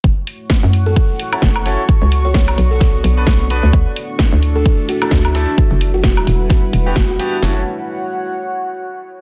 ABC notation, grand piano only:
X:1
M:4/4
L:1/16
Q:"Swing 16ths" 1/4=130
K:F#phr
V:1 name="Grand piano"
z8 z3 [CEFA] z2 [CEFA] z | z8 z3 [B,DFB] z2 [B,DFB] z | z8 z3 [A,DEA] z2 [A,DEA] z | z8 z3 [B,DFG] z2 [B,DFG] z |
[CEFA]2 z12 z2 |]